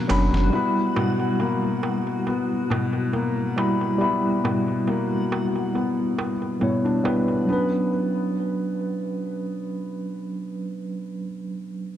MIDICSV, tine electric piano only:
0, 0, Header, 1, 2, 480
1, 0, Start_track
1, 0, Tempo, 869565
1, 289, Time_signature, 4, 2, 24, 8
1, 6607, End_track
2, 0, Start_track
2, 0, Title_t, "Tine electric piano"
2, 0, Program_c, 0, 4
2, 0, Control_c, 0, 64, 127
2, 43, Note_on_c, 0, 54, 91
2, 50, Note_on_c, 0, 61, 87
2, 55, Note_on_c, 0, 62, 81
2, 61, Note_on_c, 0, 83, 100
2, 259, Note_off_c, 0, 54, 0
2, 263, Note_off_c, 0, 61, 0
2, 265, Note_off_c, 0, 62, 0
2, 268, Note_off_c, 0, 83, 0
2, 275, Note_on_c, 0, 55, 87
2, 295, Control_c, 0, 64, 0
2, 295, Note_on_c, 0, 64, 77
2, 306, Note_on_c, 0, 83, 96
2, 403, Control_c, 0, 64, 127
2, 1935, Note_off_c, 0, 55, 0
2, 1945, Note_off_c, 0, 64, 0
2, 1951, Note_off_c, 0, 83, 0
2, 1967, Note_on_c, 0, 55, 87
2, 1977, Note_on_c, 0, 64, 84
2, 1982, Note_on_c, 0, 83, 90
2, 2182, Note_off_c, 0, 55, 0
2, 2186, Note_off_c, 0, 64, 0
2, 2189, Note_off_c, 0, 83, 0
2, 2199, Note_on_c, 0, 55, 85
2, 2217, Note_on_c, 0, 64, 77
2, 2230, Note_on_c, 0, 83, 91
2, 3622, Note_off_c, 0, 55, 0
2, 3631, Note_off_c, 0, 64, 0
2, 3637, Note_off_c, 0, 83, 0
2, 3642, Note_on_c, 0, 55, 64
2, 3649, Note_on_c, 0, 59, 61
2, 3654, Note_on_c, 0, 64, 63
2, 3659, Note_on_c, 0, 73, 72
2, 3859, Note_off_c, 0, 55, 0
2, 3862, Note_off_c, 0, 59, 0
2, 3865, Note_off_c, 0, 64, 0
2, 3868, Note_off_c, 0, 73, 0
2, 3884, Note_on_c, 0, 55, 74
2, 3890, Note_on_c, 0, 59, 70
2, 3894, Note_on_c, 0, 64, 65
2, 3900, Note_on_c, 0, 71, 85
2, 4100, Note_off_c, 0, 55, 0
2, 4103, Note_off_c, 0, 59, 0
2, 4105, Note_off_c, 0, 64, 0
2, 4107, Note_on_c, 0, 54, 69
2, 4108, Note_off_c, 0, 71, 0
2, 4123, Note_on_c, 0, 61, 67
2, 4137, Control_c, 0, 64, 0
2, 4140, Note_on_c, 0, 62, 66
2, 4155, Note_on_c, 0, 71, 74
2, 4240, Control_c, 0, 64, 127
2, 6181, Note_off_c, 0, 54, 0
2, 6197, Note_off_c, 0, 61, 0
2, 6214, Note_off_c, 0, 62, 0
2, 6229, Note_off_c, 0, 71, 0
2, 6607, End_track
0, 0, End_of_file